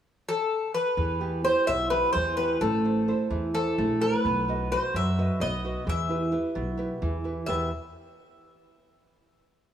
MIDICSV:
0, 0, Header, 1, 4, 480
1, 0, Start_track
1, 0, Key_signature, 1, "minor"
1, 0, Tempo, 468384
1, 990, Time_signature, 7, 3, 24, 8
1, 5545, Tempo, 458015
1, 10081, End_track
2, 0, Start_track
2, 0, Title_t, "Bouzouki"
2, 0, Program_c, 0, 25
2, 293, Note_on_c, 0, 69, 77
2, 729, Note_off_c, 0, 69, 0
2, 763, Note_on_c, 0, 71, 72
2, 1438, Note_off_c, 0, 71, 0
2, 1481, Note_on_c, 0, 72, 82
2, 1709, Note_off_c, 0, 72, 0
2, 1713, Note_on_c, 0, 76, 89
2, 1945, Note_off_c, 0, 76, 0
2, 1949, Note_on_c, 0, 71, 75
2, 2174, Note_off_c, 0, 71, 0
2, 2178, Note_on_c, 0, 72, 80
2, 2423, Note_off_c, 0, 72, 0
2, 2427, Note_on_c, 0, 71, 68
2, 2675, Note_on_c, 0, 69, 69
2, 2678, Note_off_c, 0, 71, 0
2, 3354, Note_off_c, 0, 69, 0
2, 3633, Note_on_c, 0, 69, 78
2, 4114, Note_on_c, 0, 71, 77
2, 4127, Note_off_c, 0, 69, 0
2, 4832, Note_off_c, 0, 71, 0
2, 4836, Note_on_c, 0, 72, 78
2, 5078, Note_off_c, 0, 72, 0
2, 5085, Note_on_c, 0, 76, 82
2, 5544, Note_off_c, 0, 76, 0
2, 5549, Note_on_c, 0, 75, 90
2, 5998, Note_off_c, 0, 75, 0
2, 6052, Note_on_c, 0, 76, 86
2, 7448, Note_off_c, 0, 76, 0
2, 7697, Note_on_c, 0, 76, 72
2, 7931, Note_off_c, 0, 76, 0
2, 10081, End_track
3, 0, Start_track
3, 0, Title_t, "Nylon-string guitar"
3, 0, Program_c, 1, 24
3, 996, Note_on_c, 1, 52, 64
3, 1233, Note_on_c, 1, 59, 40
3, 1238, Note_on_c, 1, 64, 39
3, 1240, Note_on_c, 1, 67, 49
3, 1461, Note_off_c, 1, 52, 0
3, 1464, Note_off_c, 1, 59, 0
3, 1468, Note_off_c, 1, 64, 0
3, 1474, Note_off_c, 1, 67, 0
3, 1476, Note_on_c, 1, 59, 48
3, 1480, Note_on_c, 1, 64, 44
3, 1486, Note_on_c, 1, 67, 52
3, 1718, Note_on_c, 1, 47, 62
3, 1860, Note_off_c, 1, 59, 0
3, 1862, Note_off_c, 1, 64, 0
3, 1866, Note_off_c, 1, 67, 0
3, 1951, Note_on_c, 1, 59, 49
3, 1958, Note_on_c, 1, 64, 43
3, 1965, Note_on_c, 1, 67, 54
3, 2183, Note_off_c, 1, 47, 0
3, 2191, Note_on_c, 1, 52, 64
3, 2337, Note_off_c, 1, 59, 0
3, 2342, Note_off_c, 1, 64, 0
3, 2343, Note_off_c, 1, 67, 0
3, 2435, Note_on_c, 1, 59, 46
3, 2441, Note_on_c, 1, 64, 37
3, 2450, Note_on_c, 1, 67, 45
3, 2628, Note_off_c, 1, 59, 0
3, 2629, Note_off_c, 1, 64, 0
3, 2636, Note_off_c, 1, 67, 0
3, 2659, Note_off_c, 1, 52, 0
3, 2679, Note_on_c, 1, 57, 63
3, 2914, Note_on_c, 1, 64, 40
3, 2918, Note_on_c, 1, 69, 38
3, 2924, Note_on_c, 1, 72, 49
3, 3143, Note_off_c, 1, 57, 0
3, 3144, Note_off_c, 1, 64, 0
3, 3145, Note_off_c, 1, 69, 0
3, 3149, Note_off_c, 1, 72, 0
3, 3156, Note_on_c, 1, 64, 51
3, 3159, Note_on_c, 1, 69, 47
3, 3162, Note_on_c, 1, 72, 55
3, 3386, Note_on_c, 1, 52, 64
3, 3540, Note_off_c, 1, 64, 0
3, 3540, Note_off_c, 1, 69, 0
3, 3543, Note_off_c, 1, 72, 0
3, 3626, Note_on_c, 1, 69, 42
3, 3627, Note_on_c, 1, 64, 45
3, 3633, Note_on_c, 1, 72, 53
3, 3855, Note_off_c, 1, 52, 0
3, 3877, Note_on_c, 1, 57, 67
3, 4012, Note_off_c, 1, 69, 0
3, 4014, Note_off_c, 1, 64, 0
3, 4016, Note_off_c, 1, 72, 0
3, 4103, Note_on_c, 1, 64, 46
3, 4108, Note_on_c, 1, 69, 45
3, 4116, Note_on_c, 1, 72, 54
3, 4298, Note_off_c, 1, 64, 0
3, 4302, Note_off_c, 1, 69, 0
3, 4304, Note_off_c, 1, 72, 0
3, 4340, Note_off_c, 1, 57, 0
3, 4364, Note_on_c, 1, 59, 69
3, 4593, Note_on_c, 1, 66, 44
3, 4598, Note_on_c, 1, 71, 40
3, 4606, Note_on_c, 1, 75, 49
3, 4818, Note_off_c, 1, 66, 0
3, 4821, Note_off_c, 1, 59, 0
3, 4821, Note_off_c, 1, 71, 0
3, 4821, Note_off_c, 1, 75, 0
3, 4829, Note_on_c, 1, 66, 50
3, 4834, Note_on_c, 1, 71, 46
3, 4836, Note_on_c, 1, 75, 51
3, 5079, Note_on_c, 1, 54, 60
3, 5211, Note_off_c, 1, 66, 0
3, 5213, Note_off_c, 1, 71, 0
3, 5213, Note_off_c, 1, 75, 0
3, 5313, Note_on_c, 1, 66, 45
3, 5317, Note_on_c, 1, 71, 47
3, 5321, Note_on_c, 1, 75, 51
3, 5536, Note_off_c, 1, 54, 0
3, 5553, Note_on_c, 1, 59, 63
3, 5694, Note_off_c, 1, 66, 0
3, 5697, Note_off_c, 1, 71, 0
3, 5697, Note_off_c, 1, 75, 0
3, 5792, Note_on_c, 1, 66, 47
3, 5800, Note_on_c, 1, 71, 42
3, 5803, Note_on_c, 1, 75, 45
3, 5986, Note_off_c, 1, 66, 0
3, 5988, Note_off_c, 1, 71, 0
3, 5988, Note_off_c, 1, 75, 0
3, 6020, Note_off_c, 1, 59, 0
3, 6027, Note_on_c, 1, 52, 64
3, 6257, Note_on_c, 1, 64, 40
3, 6268, Note_on_c, 1, 67, 38
3, 6271, Note_on_c, 1, 71, 47
3, 6482, Note_off_c, 1, 64, 0
3, 6488, Note_off_c, 1, 67, 0
3, 6492, Note_off_c, 1, 71, 0
3, 6494, Note_on_c, 1, 64, 45
3, 6498, Note_off_c, 1, 52, 0
3, 6501, Note_on_c, 1, 67, 39
3, 6505, Note_on_c, 1, 71, 55
3, 6740, Note_on_c, 1, 47, 64
3, 6889, Note_off_c, 1, 64, 0
3, 6893, Note_off_c, 1, 67, 0
3, 6895, Note_off_c, 1, 71, 0
3, 6973, Note_on_c, 1, 64, 48
3, 6978, Note_on_c, 1, 67, 41
3, 6987, Note_on_c, 1, 71, 50
3, 7216, Note_off_c, 1, 47, 0
3, 7230, Note_on_c, 1, 52, 65
3, 7369, Note_off_c, 1, 64, 0
3, 7370, Note_off_c, 1, 67, 0
3, 7376, Note_off_c, 1, 71, 0
3, 7464, Note_on_c, 1, 64, 44
3, 7471, Note_on_c, 1, 67, 37
3, 7474, Note_on_c, 1, 71, 45
3, 7664, Note_off_c, 1, 64, 0
3, 7664, Note_off_c, 1, 67, 0
3, 7668, Note_off_c, 1, 71, 0
3, 7701, Note_off_c, 1, 52, 0
3, 7703, Note_on_c, 1, 40, 48
3, 7711, Note_on_c, 1, 47, 46
3, 7715, Note_on_c, 1, 52, 45
3, 7716, Note_on_c, 1, 59, 48
3, 7722, Note_on_c, 1, 67, 45
3, 7727, Note_on_c, 1, 71, 55
3, 7934, Note_off_c, 1, 40, 0
3, 7938, Note_off_c, 1, 47, 0
3, 7940, Note_off_c, 1, 52, 0
3, 7941, Note_off_c, 1, 59, 0
3, 7944, Note_off_c, 1, 67, 0
3, 7946, Note_off_c, 1, 71, 0
3, 10081, End_track
4, 0, Start_track
4, 0, Title_t, "Upright bass"
4, 0, Program_c, 2, 32
4, 997, Note_on_c, 2, 40, 90
4, 1500, Note_off_c, 2, 40, 0
4, 1720, Note_on_c, 2, 35, 73
4, 2055, Note_off_c, 2, 35, 0
4, 2204, Note_on_c, 2, 40, 90
4, 2537, Note_off_c, 2, 40, 0
4, 2677, Note_on_c, 2, 33, 96
4, 3180, Note_off_c, 2, 33, 0
4, 3386, Note_on_c, 2, 40, 84
4, 3725, Note_off_c, 2, 40, 0
4, 3876, Note_on_c, 2, 34, 89
4, 4210, Note_off_c, 2, 34, 0
4, 4353, Note_on_c, 2, 35, 91
4, 4854, Note_off_c, 2, 35, 0
4, 5066, Note_on_c, 2, 42, 81
4, 5400, Note_off_c, 2, 42, 0
4, 5535, Note_on_c, 2, 35, 88
4, 5878, Note_off_c, 2, 35, 0
4, 6024, Note_on_c, 2, 40, 89
4, 6534, Note_off_c, 2, 40, 0
4, 6748, Note_on_c, 2, 35, 82
4, 7088, Note_off_c, 2, 35, 0
4, 7230, Note_on_c, 2, 40, 86
4, 7570, Note_off_c, 2, 40, 0
4, 7715, Note_on_c, 2, 40, 83
4, 7940, Note_off_c, 2, 40, 0
4, 10081, End_track
0, 0, End_of_file